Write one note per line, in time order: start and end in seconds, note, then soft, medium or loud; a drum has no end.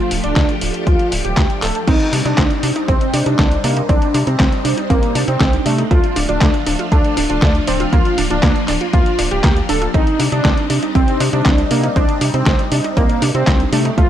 0.00 1.84 F3 medium
0.00 1.84 A3 medium
0.00 1.84 D4 medium
0.00 0.11 F4 loud
0.00 1.86 G4 medium
0.11 0.20 D1 loud
0.11 open hi-hat loud
0.24 0.33 D1 medium
0.24 0.49 D4 loud
0.24 closed hi-hat soft
0.36 0.45 D2 medium
0.36 kick loud
0.36 snare loud
0.36 clap medium
0.36 closed hi-hat medium
0.49 closed hi-hat soft
0.61 0.71 D1 medium
0.61 open hi-hat loud
0.74 closed hi-hat soft
0.87 0.96 D2 loud
0.87 1.12 F4 loud
0.87 kick loud
0.87 closed hi-hat medium
0.99 closed hi-hat soft
1.12 1.21 D1 medium
1.12 open hi-hat loud
1.25 1.34 D1 loud
1.25 1.50 G4 medium
1.25 closed hi-hat soft
1.37 1.46 D2 medium
1.37 kick loud
1.37 snare loud
1.37 clap loud
1.37 closed hi-hat medium
1.50 closed hi-hat soft
1.62 1.71 D1 medium
1.62 1.79 A4 medium
1.62 clap medium
1.62 open hi-hat loud
1.75 closed hi-hat soft
1.87 1.97 C2 loud
1.87 5.87 G3 medium
1.87 1.94 C4 loud
1.87 5.87 C4 medium
1.87 13.94 D4 medium
1.87 2.13 D#4 loud
1.87 5.87 D#4 medium
1.87 kick loud
1.87 closed hi-hat medium
1.87 crash loud
2.00 closed hi-hat soft
2.13 2.22 C3 loud
2.13 2.25 D4 loud
2.13 open hi-hat loud
2.25 2.34 C3 medium
2.25 2.51 D4 medium
2.25 2.31 D#4 medium
2.25 closed hi-hat soft
2.38 2.47 C2 medium
2.38 2.44 C4 loud
2.38 kick loud
2.38 snare loud
2.38 clap medium
2.38 closed hi-hat medium
2.50 closed hi-hat soft
2.63 2.72 C3 medium
2.63 2.75 D4 loud
2.63 open hi-hat loud
2.76 2.82 D#4 medium
2.76 closed hi-hat soft
2.88 2.97 C2 medium
2.88 3.14 C4 loud
2.88 2.95 C4 loud
2.88 kick loud
2.88 closed hi-hat medium
3.01 closed hi-hat soft
3.14 3.23 C3 medium
3.14 3.26 D4 loud
3.14 open hi-hat loud
3.26 3.35 C3 medium
3.26 3.52 D4 medium
3.26 3.32 D#4 medium
3.26 closed hi-hat soft
3.39 3.57 C2 medium
3.39 3.45 C4 loud
3.39 kick loud
3.39 snare loud
3.39 clap medium
3.39 closed hi-hat medium
3.51 closed hi-hat soft
3.64 3.82 C3 medium
3.64 3.81 A#3 medium
3.64 3.76 D4 loud
3.64 open hi-hat loud
3.77 3.83 D#4 medium
3.77 closed hi-hat soft
3.89 3.98 C2 loud
3.89 3.95 C4 loud
3.89 4.15 D4 loud
3.89 kick loud
3.89 closed hi-hat medium
4.02 closed hi-hat soft
4.14 4.23 C3 loud
4.14 4.26 D4 loud
4.14 open hi-hat medium
4.27 4.36 C3 medium
4.27 4.53 C4 loud
4.27 4.33 D#4 medium
4.27 closed hi-hat soft
4.40 4.49 C2 medium
4.40 4.46 C4 loud
4.40 kick loud
4.40 snare loud
4.40 clap medium
4.40 closed hi-hat medium
4.52 closed hi-hat soft
4.65 4.74 C3 medium
4.65 4.77 D4 loud
4.65 open hi-hat loud
4.77 4.83 D#4 medium
4.77 closed hi-hat soft
4.90 4.99 C2 loud
4.90 5.16 A#3 loud
4.90 4.96 C4 loud
4.90 kick loud
4.90 closed hi-hat medium
5.03 closed hi-hat soft
5.15 5.24 C3 medium
5.15 5.27 D4 loud
5.15 open hi-hat loud
5.28 5.37 C3 medium
5.28 5.53 C4 medium
5.28 5.34 D#4 medium
5.28 closed hi-hat soft
5.40 5.59 C2 medium
5.40 5.47 C4 loud
5.40 kick loud
5.40 snare loud
5.40 clap medium
5.40 closed hi-hat medium
5.53 closed hi-hat soft
5.66 5.84 C3 medium
5.66 5.83 A3 medium
5.66 5.78 D4 loud
5.66 open hi-hat loud
5.78 5.84 D#4 medium
5.78 closed hi-hat soft
5.91 6.00 D2 loud
5.91 9.90 F3 medium
5.91 5.97 A3 loud
5.91 7.91 A3 medium
5.91 9.90 F4 medium
5.91 6.17 F4 loud
5.91 kick loud
5.91 closed hi-hat medium
6.04 closed hi-hat soft
6.16 6.25 D1 loud
6.16 6.28 D4 loud
6.16 open hi-hat loud
6.29 6.38 D1 medium
6.29 6.54 D4 loud
6.29 6.35 F4 medium
6.29 closed hi-hat soft
6.41 6.50 D2 medium
6.41 6.47 A3 loud
6.41 kick loud
6.41 snare loud
6.41 clap medium
6.41 closed hi-hat medium
6.54 closed hi-hat soft
6.66 6.76 D1 medium
6.66 6.79 D4 loud
6.66 open hi-hat loud
6.79 6.85 F4 medium
6.79 closed hi-hat soft
6.92 7.01 D2 loud
6.92 6.98 A3 loud
6.92 7.17 D4 loud
6.92 kick loud
6.92 closed hi-hat medium
7.04 closed hi-hat soft
7.17 7.26 D1 medium
7.17 7.29 D4 loud
7.17 open hi-hat loud
7.30 7.39 D1 medium
7.30 7.55 D4 medium
7.30 7.36 F4 medium
7.30 closed hi-hat soft
7.42 7.60 D2 medium
7.42 7.48 A3 loud
7.42 kick loud
7.42 snare loud
7.42 clap medium
7.42 closed hi-hat medium
7.55 closed hi-hat soft
7.67 7.85 D1 medium
7.67 7.84 C4 loud
7.67 7.79 D4 loud
7.67 open hi-hat loud
7.80 7.86 F4 medium
7.80 closed hi-hat soft
7.93 8.02 D2 loud
7.93 9.92 A#3 medium
7.93 7.99 A#3 loud
7.93 8.18 F4 loud
7.93 kick loud
7.93 closed hi-hat medium
8.05 closed hi-hat soft
8.18 8.27 D1 loud
8.18 8.30 D4 loud
8.18 open hi-hat loud
8.30 8.39 D1 medium
8.30 8.56 D4 loud
8.30 8.37 F4 medium
8.30 closed hi-hat soft
8.43 8.52 D2 medium
8.43 8.49 A#3 loud
8.43 kick loud
8.43 snare loud
8.43 clap medium
8.43 closed hi-hat medium
8.56 closed hi-hat soft
8.68 8.77 D1 medium
8.68 8.80 D4 loud
8.68 clap medium
8.68 open hi-hat loud
8.81 8.87 F4 medium
8.81 closed hi-hat soft
8.93 9.03 D2 loud
8.93 8.99 A#3 loud
8.93 9.19 F4 loud
8.93 kick loud
8.93 closed hi-hat medium
9.06 closed hi-hat soft
9.19 9.28 D1 medium
9.19 9.31 D4 loud
9.19 open hi-hat loud
9.31 9.40 D1 medium
9.31 9.37 F4 medium
9.31 9.57 G4 medium
9.31 closed hi-hat soft
9.44 9.62 D2 medium
9.44 9.50 A#3 loud
9.44 kick loud
9.44 snare loud
9.44 clap medium
9.44 closed hi-hat medium
9.56 closed hi-hat soft
9.69 9.87 D1 medium
9.69 9.81 D4 loud
9.69 9.86 A4 loud
9.69 open hi-hat loud
9.82 9.88 F4 medium
9.82 closed hi-hat soft
9.94 10.03 C2 loud
9.94 13.94 G3 medium
9.94 10.00 C4 loud
9.94 13.94 C4 medium
9.94 13.94 D#4 medium
9.94 10.20 D#4 loud
9.94 kick loud
9.94 closed hi-hat medium
10.07 closed hi-hat soft
10.19 10.29 C3 medium
10.19 10.31 D4 loud
10.19 open hi-hat loud
10.32 10.41 C3 medium
10.32 10.58 D4 loud
10.32 10.38 D#4 medium
10.32 closed hi-hat soft
10.45 10.54 C2 medium
10.45 10.51 C4 loud
10.45 kick loud
10.45 snare loud
10.45 clap medium
10.45 closed hi-hat medium
10.57 closed hi-hat soft
10.70 10.79 C3 medium
10.70 10.82 D4 loud
10.70 open hi-hat loud
10.83 10.89 D#4 medium
10.83 closed hi-hat soft
10.95 11.04 C2 loud
10.95 11.01 C4 loud
10.95 11.21 C4 loud
10.95 kick loud
10.95 closed hi-hat medium
11.08 closed hi-hat soft
11.20 11.29 C3 medium
11.20 11.32 D4 loud
11.20 open hi-hat loud
11.33 11.42 C3 medium
11.33 11.59 D4 medium
11.33 11.39 D#4 medium
11.33 closed hi-hat soft
11.46 11.64 C2 medium
11.46 11.52 C4 loud
11.46 kick loud
11.46 snare loud
11.46 clap medium
11.46 closed hi-hat medium
11.58 closed hi-hat soft
11.71 11.89 C3 medium
11.71 11.88 A#3 medium
11.71 11.83 D4 loud
11.71 open hi-hat loud
11.83 11.89 D#4 medium
11.83 closed hi-hat soft
11.96 12.05 C2 loud
11.96 12.02 C4 loud
11.96 12.22 D4 loud
11.96 kick loud
11.96 closed hi-hat medium
12.09 closed hi-hat soft
12.21 12.30 C3 loud
12.21 12.33 D4 loud
12.21 open hi-hat loud
12.34 12.43 C3 medium
12.34 12.59 C4 loud
12.34 12.40 D#4 medium
12.34 closed hi-hat soft
12.46 12.55 C2 medium
12.46 12.53 C4 loud
12.46 kick loud
12.46 snare loud
12.46 clap medium
12.46 closed hi-hat medium
12.59 closed hi-hat soft
12.72 12.81 C3 medium
12.72 12.84 D4 loud
12.72 open hi-hat loud
12.84 12.90 D#4 medium
12.84 closed hi-hat soft
12.97 13.06 C2 loud
12.97 13.22 A#3 loud
12.97 13.03 C4 loud
12.97 kick loud
12.97 closed hi-hat medium
13.09 closed hi-hat soft
13.22 13.31 C3 medium
13.22 13.34 D4 loud
13.22 open hi-hat loud
13.35 13.44 C3 medium
13.35 13.60 C4 loud
13.35 13.41 D#4 medium
13.35 closed hi-hat soft
13.47 13.65 C2 medium
13.47 13.53 C4 loud
13.47 kick loud
13.47 snare loud
13.47 clap medium
13.47 closed hi-hat medium
13.60 closed hi-hat soft
13.72 13.90 C3 medium
13.72 13.90 A3 loud
13.72 13.85 D4 loud
13.72 open hi-hat loud
13.85 13.91 D#4 medium
13.85 closed hi-hat soft
13.98 14.07 D2 loud
13.98 14.10 D3 medium
13.98 14.10 F3 medium
13.98 14.04 A3 loud
13.98 14.10 A3 medium
13.98 14.10 F4 medium
13.98 14.10 F4 loud
13.98 kick loud
13.98 closed hi-hat medium